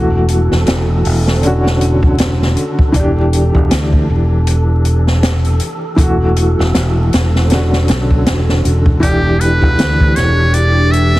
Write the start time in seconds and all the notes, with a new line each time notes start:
Already playing: E1 E3 A3 F#4 A4
0.28 closed hi-hat
0.52 E1, snare
0.67 E1, snare, closed hi-hat
1.05 E1, open hi-hat
1.27 snare
1.40 D3 C#4, closed hi-hat
1.47 F#4
1.66 snare
1.81 closed hi-hat
2.03 kick
2.18 snare, closed hi-hat
2.42 snare
2.57 closed hi-hat
2.79 kick
2.92 E1 E3 D4, kick, closed hi-hat
2.99 G4
3.33 closed hi-hat
3.55 E1, kick
3.71 D2, snare, closed hi-hat
3.93 kick
4.10 E1
4.47 closed hi-hat
4.85 closed hi-hat
5.07 snare
5.23 snare, closed hi-hat
5.45 closed hi-hat
5.60 closed hi-hat
5.96 E1 E3 A3, kick, closed hi-hat
6.03 F#4
6.36 closed hi-hat
6.59 E1, snare
6.75 E1, snare, closed hi-hat
7.13 E1, snare, closed hi-hat
7.35 snare
7.48 D3 C#4, closed hi-hat
7.52 F#4, snare
7.73 snare
7.88 B1, snare, closed hi-hat
8.11 kick
8.26 E1, snare, closed hi-hat
8.49 snare
8.65 E1, closed hi-hat
8.86 kick
9.00 E1 E3 D4 G4, kick, closed hi-hat
9.07 G4
9.41 B4, closed hi-hat
9.62 E1, kick
9.78 D2, snare, closed hi-hat
10.00 kick
10.16 E1 C#5, snare, closed hi-hat
10.53 D5, closed hi-hat
10.92 E5, closed hi-hat
11.16 snare